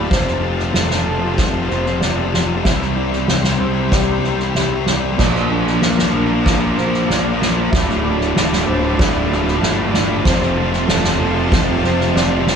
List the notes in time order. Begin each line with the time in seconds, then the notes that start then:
Already playing: A2 D3 A3 F4 D5 A5
0.03 D2 A2
0.09 F1 F2 C3 C5, kick, snare
0.16 F2 C3
0.24 F2 C3, snare
0.32 F2 C3
0.39 F2 C3 A3
0.47 F2 C3
0.56 F2 C3, snare
0.64 F2 C3
0.72 F1 F2 C3 F3 A4, snare
0.79 F2 C3
0.85 F2 C3
0.90 F2, snare
0.95 C3
1.02 F2 C3 A3 A4
1.07 F1 F2 C3
1.18 F2 C3
1.26 F2 C3
1.33 F2 C3
1.38 F1 F2 C3 C4, kick, snare
1.48 F2 C3
1.56 F2 C3
1.64 F2 C3
1.68 F1 F2 C3 F4 C5, snare
1.78 F2 C3
1.86 F2 C3, snare
1.94 F2 C3
2.00 F1 F2 C3 C4 D5, snare
2.10 F2 C3
2.17 F2 C3
2.26 F2 C3
2.33 F2 C3 F3, snare
2.41 F2 C3
2.48 F2 C3
2.56 F2 C3
2.64 C2 C3 G3 E4 C5 E5 G5, kick, snare
2.72 C3 G3
2.81 C3 G3, snare
2.87 C3 G3
2.95 C3 G3 E4 D5
3.02 C3 G3
3.11 C3 G3, snare
3.18 C3 G3
3.26 C2 C3 G3 C4, snare
3.34 C3 G3
3.41 C3 G3, snare
3.49 C3 G3
3.58 C2 C3 G3 E4 C5
3.65 C3 G3
3.73 C3 G3
3.80 C3 G3
3.88 C3 G3, snare
3.92 C2 G3 G4 D5, kick
3.96 C3
4.03 C3 G3
4.11 C3 G3
4.18 C3 G3
4.24 C2 C3 G3 C5, snare
4.34 C3 G3
4.39 C3 G3, snare
4.50 C3 G3
4.55 C2 C3 G4 E5, snare
4.59 G3
4.65 C3 G3
4.72 C3 G3
4.81 C3 G3
4.86 C3 G3 C4 D5, snare
4.96 C3 G3
5.03 C3 G3
5.11 C3 G3
5.16 A#1 A#2 F3 F4 D5 A#5, kick, snare, crash
5.26 A#2 F3
5.33 A#2 F3, snare
5.40 A#2 F3
5.48 A#2 F3 D4
5.56 A#2 F3
5.64 A#2 F3, snare
5.72 A#2 F3
5.79 A#1 A#2 F3 A#3 A#4, snare
5.86 A#2 F3
5.94 A#2 F3
5.99 A#2, snare
6.03 F3
6.10 A#1 A#2 F3 A#4
6.15 A#2 D4
6.19 F3
6.26 A#2 F3
6.32 A#2 F3
6.40 A#2 F3
6.46 A#1 A#2 F3 F4, kick, snare
6.56 A#2 F3
6.64 A#2 F3
6.71 A#2 F3
6.77 A#1 A#2 F3 A#4 C5, snare
6.87 A#2 F3
6.94 A#2 F3, snare
7.02 A#2 F3
7.09 A#1 A#2 F3 F4 D5, snare
7.18 A#2 F3
7.24 A#2 F3
7.33 A#2 F3
7.40 A#2 F3 A#3, snare
7.48 A#2 F3
7.56 A#2 F3
7.64 A#2 F3
7.71 D1 D2 A2 E5 A5, kick, snare
7.80 D2 A2
7.88 D2 A2, snare
7.96 D2 A2
8.02 D2 A2 D3 D5
8.11 D2 A2
8.18 D2 A2, snare
8.27 D2 A2
8.34 D1 D2 A2, snare
8.41 D2 A2
8.49 D2 A2
8.53 snare
8.57 D2 A2
8.65 D1 D2 A2 D3 C5
8.72 D2 A2
8.79 D2 A2
8.87 D2 A2
8.95 D2 A2 A3 D5
8.99 D1 A2, kick, snare
9.03 D2
9.11 D2 A2
9.17 D2 A2
9.25 D1 D2 A2
9.30 D2 F4, snare
9.34 A2
9.42 D2 A2
9.48 D2 A2, snare
9.56 D2 A2
9.61 G1 D2 A3 E5, snare
9.65 A2
9.71 D2 A2
9.79 D2 A2
9.86 D2 A2
9.92 D2 A2 D5, snare
10.02 D2 A2
10.10 D2 A2
10.18 D2 A2
10.24 F1 F2 C3 C5 A5, kick, snare
10.32 F2 C3
10.40 F2 C3, snare
10.47 F2 C3
10.54 F2 C3 A3
10.62 F2 C3
10.70 F2 C3, snare
10.78 F2 C3
10.85 F1 F2 C3 F3 A4, snare
10.94 F2 C3
11.01 F2 C3, snare
11.09 F2 C3
11.16 F1 F2 C3 A3 A4
11.25 F2 C3
11.32 F2 C3
11.39 F2 C3
11.47 F2 C3
11.52 F1 F2 C3 C4, kick, snare
11.61 F2 C3
11.71 F2 C3
11.77 F2 C3
11.82 F1 F2 C3 F4 C5, snare
11.87 C3
11.92 F2 C3
12.00 F2 C3, snare
12.08 F2 C3
12.15 F1 F2 C3 C4 D5, snare
12.24 F2 C3
12.31 F2 C3
12.39 F2 C3
12.46 F2 C3 F3, snare
12.51 C3